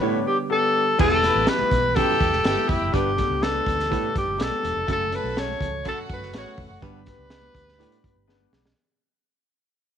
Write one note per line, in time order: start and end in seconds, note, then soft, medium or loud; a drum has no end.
0.00 0.21 A2 medium
0.00 0.95 D3 medium
0.00 0.97 G3 medium
0.00 0.98 B3 medium
0.00 0.34 B3 medium
0.00 0.34 D4 medium
0.00 0.98 G4 medium
0.00 0.34 G4 medium
0.00 0.26 B4 loud
0.00 0.34 C#5 loud
0.27 0.38 G4 medium
0.50 0.83 B3 medium
0.50 0.82 D4 medium
0.50 0.82 G4 medium
0.50 0.83 A4 medium
0.50 0.96 A4 medium
0.99 1.28 E1 medium
0.99 1.19 E2 medium
0.99 2.93 E3 medium
0.99 4.85 G3 medium
0.99 1.15 B3 loud
0.99 4.85 B3 medium
0.99 1.15 E4 medium
0.99 1.15 G4 medium
0.99 2.92 G4 medium
0.99 1.50 A4 loud
0.99 1.15 B4 loud
0.99 kick loud
0.99 crash loud
0.99 muted conga soft
1.11 muted conga soft
1.22 1.40 B3 medium
1.22 1.39 E4 medium
1.22 1.40 G4 medium
1.22 1.69 B4 loud
1.22 1.40 B4 medium
1.22 1.69 B5 loud
1.22 snare soft
1.22 closed hi-hat medium
1.22 high conga medium
1.36 1.45 A1 loud
1.47 1.80 B3 medium
1.47 1.80 E4 medium
1.47 1.80 G4 medium
1.47 1.80 B4 medium
1.47 1.97 B4 loud
1.47 snare loud
1.47 closed hi-hat medium
1.59 muted fingered electric bass stroke soft
1.59 muted conga soft
1.59 high conga medium
1.71 2.00 B1 medium
1.71 kick medium
1.71 closed hi-hat medium
1.71 low conga medium
1.95 2.16 F#2 medium
1.95 2.28 B3 medium
1.95 2.28 E4 medium
1.95 2.29 G4 medium
1.95 2.42 G4 loud
1.95 2.70 A4 loud
1.95 2.29 B4 medium
1.95 2.42 G5 loud
1.95 kick loud
1.95 closed hi-hat medium
1.95 muted conga soft
2.20 2.30 E2 medium
2.20 kick loud
2.20 closed hi-hat medium
2.20 high conga soft
2.33 2.42 E1 medium
2.33 snare soft
2.44 2.55 G1 medium
2.44 2.77 B3 medium
2.44 2.77 E4 medium
2.44 2.77 G4 medium
2.44 2.79 G4 loud
2.44 2.77 B4 medium
2.44 2.79 G5 loud
2.44 snare loud
2.44 closed hi-hat loud
2.44 muted conga soft
2.58 muted conga soft
2.58 high conga medium
2.68 2.79 F1 medium
2.68 2.95 E4 medium
2.68 kick loud
2.68 closed hi-hat medium
2.68 low conga medium
2.81 2.91 F#1 medium
2.92 3.23 G1 medium
2.92 3.13 G2 medium
2.92 3.09 B3 medium
2.92 3.09 D4 medium
2.92 4.86 D4 medium
2.92 3.09 G4 medium
2.92 3.44 G4 loud
2.92 4.86 G4 medium
2.92 3.10 B4 loud
2.92 kick loud
2.92 closed hi-hat medium
3.16 3.33 B3 medium
3.16 3.33 D4 medium
3.16 3.33 G4 medium
3.16 3.33 A4 medium
3.16 kick medium
3.16 snare soft
3.16 closed hi-hat medium
3.16 high conga medium
3.30 3.59 C#2 medium
3.41 3.74 B3 medium
3.41 3.74 D4 medium
3.41 3.75 G4 medium
3.41 4.15 A4 medium
3.41 3.75 B4 medium
3.41 snare loud
3.41 closed hi-hat medium
3.41 muted conga soft
3.54 muted conga soft
3.54 high conga medium
3.66 3.95 D2 medium
3.66 kick medium
3.66 closed hi-hat medium
3.66 low conga medium
3.80 snare soft
3.80 closed hi-hat soft
3.90 4.10 A2 medium
3.90 4.23 B3 medium
3.90 4.23 D4 medium
3.90 4.23 G4 medium
3.90 4.23 B4 medium
3.90 kick loud
3.90 closed hi-hat medium
4.04 muted conga soft
4.14 4.25 G2 medium
4.14 4.44 G4 medium
4.14 kick medium
4.14 closed hi-hat medium
4.14 high conga soft
4.28 4.37 G1 medium
4.38 4.49 B1 loud
4.38 4.71 B3 medium
4.38 4.71 D4 medium
4.38 4.71 G4 medium
4.38 4.71 A4 medium
4.38 snare loud
4.38 closed hi-hat loud
4.38 muted conga soft
4.43 4.90 A4 loud
4.52 muted conga soft
4.52 high conga medium
4.63 4.74 E1 medium
4.63 closed hi-hat medium
4.63 low conga medium
4.76 4.86 F1 medium
4.87 5.17 F#1 loud
4.87 5.08 F#2 medium
4.87 6.82 F#3 medium
4.87 5.04 A3 loud
4.87 6.82 A3 medium
4.87 5.04 C#4 medium
4.87 6.81 C#4 medium
4.87 5.04 F#4 medium
4.87 5.04 A4 loud
4.87 6.82 A4 medium
4.87 kick loud
4.87 closed hi-hat medium
4.87 muted conga soft
4.92 5.17 A4 loud
5.01 muted conga soft
5.12 5.29 A3 medium
5.12 5.28 C#4 medium
5.12 5.29 F#4 medium
5.12 5.58 A4 medium
5.12 5.29 A4 medium
5.12 5.41 B4 medium
5.12 5.58 A5 loud
5.12 closed hi-hat medium
5.12 high conga medium
5.24 5.53 B1 loud
5.37 5.69 A3 medium
5.37 5.69 C#4 medium
5.37 5.69 F#4 medium
5.37 5.69 A4 medium
5.37 5.87 C#5 loud
5.37 snare loud
5.37 closed hi-hat medium
5.37 muted conga soft
5.49 high conga medium
5.60 5.90 C#2 loud
5.60 kick medium
5.60 closed hi-hat medium
5.60 low conga medium
5.85 6.05 F#2 medium
5.85 6.18 A3 medium
5.85 6.18 C#4 medium
5.85 6.31 F#4 loud
5.85 6.18 F#4 medium
5.85 6.18 A4 medium
5.85 5.99 A4 loud
5.85 6.31 F#5 loud
5.85 kick medium
5.85 closed hi-hat medium
5.85 muted conga soft
6.10 6.19 F#2 medium
6.10 6.34 B4 loud
6.10 kick loud
6.10 closed hi-hat medium
6.10 high conga medium
6.21 6.31 F#1 medium
6.21 snare soft
6.33 6.43 A1 loud
6.33 6.66 A3 medium
6.33 6.66 C#4 medium
6.33 6.66 F#4 medium
6.33 6.69 F#4 loud
6.33 6.67 B4 medium
6.33 6.68 F#5 loud
6.33 snare loud
6.33 closed hi-hat loud
6.33 muted conga soft
6.38 6.59 C#5 medium
6.46 muted conga soft
6.46 high conga medium
6.57 6.68 F1 medium
6.57 kick loud
6.57 open hi-hat medium
6.57 low conga medium
6.70 6.80 F#1 medium
6.82 7.11 G1 loud
6.82 7.02 G2 medium
6.82 8.75 G3 medium
6.82 6.99 B3 medium
6.82 8.76 B3 medium
6.82 8.75 D4 medium
6.82 6.99 D4 medium
6.82 6.99 G4 medium
6.82 8.75 G4 medium
6.82 6.99 B4 loud
6.82 8.50 B4 loud
6.82 kick loud
6.82 closed hi-hat medium
7.06 7.24 B3 medium
7.06 7.24 D4 medium
7.06 7.24 G4 medium
7.06 7.24 B4 medium
7.06 kick medium
7.06 snare soft
7.06 closed hi-hat medium
7.06 high conga medium
7.19 7.48 C#2 medium
7.30 7.63 B3 medium
7.30 7.64 D4 medium
7.30 7.64 G4 medium
7.30 7.64 B4 medium
7.30 snare loud
7.30 closed hi-hat medium
7.30 muted conga soft
7.42 muted conga soft
7.42 high conga medium
7.55 7.84 D2 medium
7.55 kick medium
7.55 closed hi-hat medium
7.55 low conga medium
7.68 snare soft
7.79 7.99 A2 medium
7.79 8.12 B3 medium
7.79 8.12 D4 medium
7.79 8.12 G4 medium
7.79 8.12 B4 medium
7.79 closed hi-hat medium
7.79 muted conga soft
7.92 closed hi-hat soft
8.04 8.14 G2 medium
8.04 kick medium
8.04 closed hi-hat medium
8.04 high conga soft
8.16 8.45 G1 medium
8.27 8.61 B3 medium
8.27 8.61 D4 medium
8.27 8.61 G4 medium
8.27 8.61 B4 medium
8.27 snare medium
8.41 high conga medium
8.52 8.72 B1 medium
8.52 snare loud
8.52 low conga medium
8.66 snare loud